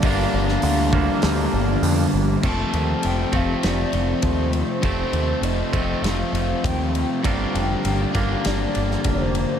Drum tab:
CC |----------------|x---------------|----------------|----------------|
RD |----------------|--x-x-x-x-x-x-x-|x-x-x-x-x-x-x-x-|x-x-x-x-x-x-x-x-|
HH |o---o---o---o---|----------------|----------------|----------------|
SD |---o----o-------|--------o-------|--------o-------|--------o--o----|
BD |o-----o---------|o-----o-----o---|o-----o-----o---|o-----o-----o---|